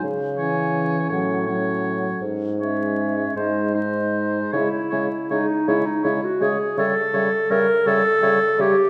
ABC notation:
X:1
M:6/8
L:1/16
Q:3/8=54
K:C#m
V:1 name="Flute"
z2 g4 f2 f4 | z2 e4 d2 d4 | e2 e2 e2 e2 e2 e2 | e2 e2 e2 e2 e2 e2 |]
V:2 name="Oboe"
z2 c4 c2 c4 | z2 c4 ^B2 B4 | c2 c2 c2 c2 c2 c2 | c2 c2 c2 c2 c2 c2 |]
V:3 name="Clarinet"
z2 C4 C2 C4 | z2 C4 D2 D4 | E4 D2 E D E F G2 | A4 ^A2 =A4 =G2 |]
V:4 name="French horn" clef=bass
z2 E,4 F,2 F,4 | z2 G,4 G,2 G,4 | G,2 G,2 G,2 G,2 G,2 G,2 | =G,2 G,2 G,2 G,2 G,2 G,2 |]
V:5 name="Bassoon" clef=bass
C,6 A,,6 | G,,6 G,,6 | C,2 C,2 C,2 C,2 C,2 C,2 | C,2 C,2 C,2 C,2 C,2 C,2 |]